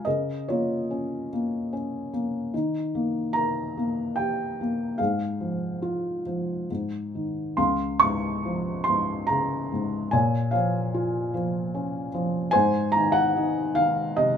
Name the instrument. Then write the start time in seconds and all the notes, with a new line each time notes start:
felt piano
0.05 C#3 A#4 D#5
0.48 A#3 F4 C#5
0.91 C#4
1.33 A#3
1.73 C#4
2.13 A#3
2.54 D#3
2.95 A#3
3.33 A#4 A#5
3.77 A#3
4.16 G4 G5
4.61 A#3
4.98 G#2 G#4 F5
5.40 F3
5.82 F4
6.26 F3
6.70 G#2
7.15 D#3
7.57 C#2 F5 C6
8.00 G#2 C#6
8.45 F3
8.84 C6
8.88 G#2
9.27 C#3 A#5
9.72 G#2
10.11 A#2 C#5 G#5
10.51 F3 C#5 F5
10.94 F4
11.34 F3
11.74 C#4
12.14 F3
12.51 G#2 C5 G#5
12.92 A#5
12.96 D#3
13.12 F#5
13.37 D#4
13.75 D#3 F5
14.17 C3 D#5